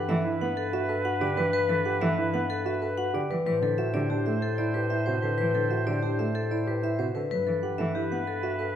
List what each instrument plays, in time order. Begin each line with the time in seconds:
Already playing: bass clarinet G2, grand piano G4, oboe B4, vibraphone F#5
0.09 cello E3, grand piano A4, vibraphone E5
0.25 grand piano E4
0.41 cello B3, grand piano B4, vibraphone F#5
0.57 vibraphone A4
0.73 grand piano F#4, vibraphone E5
0.89 grand piano A4, vibraphone B4
1.05 grand piano F#4, vibraphone F#5
1.21 cello D3, grand piano G4, vibraphone D5
1.37 cello E3, vibraphone B4, grand piano B4
1.53 vibraphone B4
1.69 cello E3, vibraphone A4
1.85 grand piano G4, vibraphone F#5
2.01 cello E3, grand piano A4, vibraphone E5
2.18 grand piano E4
2.33 cello B3, grand piano B4, vibraphone F#5
2.50 vibraphone A4
2.66 grand piano F#4, vibraphone E5
2.82 grand piano A4, vibraphone B4
2.98 grand piano F#4, vibraphone F#5
3.14 cello D3, grand piano G4, vibraphone D5
3.30 cello E3, grand piano B4, vibraphone B4
3.46 bass clarinet A2, cello E3, vibraphone B4, oboe C5
3.62 cello D3, vibraphone A4
3.78 grand piano F#4, vibraphone E5
3.94 cello D3, grand piano G4, vibraphone D5
4.10 grand piano D4, vibraphone G4
4.26 cello A3, grand piano A4, vibraphone E5
4.42 vibraphone A4
4.58 grand piano E4, vibraphone D5
4.74 grand piano G4, vibraphone B4
4.90 grand piano E4, vibraphone E5
5.06 cello C3, grand piano F#4, vibraphone C5
5.22 cello D3, grand piano A4, vibraphone B4
5.38 cello E3, vibraphone B4
5.55 cello D3, vibraphone A4
5.70 grand piano F#4, vibraphone E5
5.87 cello D3, grand piano G4, vibraphone D5
6.02 grand piano D4, vibraphone G4
6.19 cello A3, grand piano A4, vibraphone E5
6.35 vibraphone A4
6.51 grand piano E4, vibraphone D5
6.67 grand piano G4, vibraphone B4
6.83 grand piano E4, vibraphone E5
6.99 cello C3, grand piano F#4, vibraphone C5
7.15 cello D3, grand piano A4, vibraphone B4
7.31 bass clarinet G2, cello F#3, oboe B4, vibraphone B4
7.47 cello E3, vibraphone A4
7.63 grand piano G4, vibraphone F#5
7.78 cello E3, grand piano A4, vibraphone E5
7.95 grand piano E4, vibraphone G4
8.11 cello B3, grand piano B4, vibraphone F#5
8.27 vibraphone A4
8.43 grand piano F#4, vibraphone E5
8.59 grand piano A4, vibraphone B4